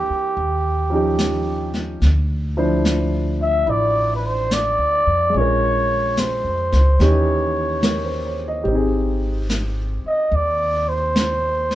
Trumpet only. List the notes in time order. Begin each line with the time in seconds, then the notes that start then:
Already playing: G4
3.42 E5
3.70 D5
4.16 B4
4.26 C5
4.53 D5
5.37 C#5
6.19 C5
7.03 C#5
10.07 D#5
10.35 D5
10.89 C5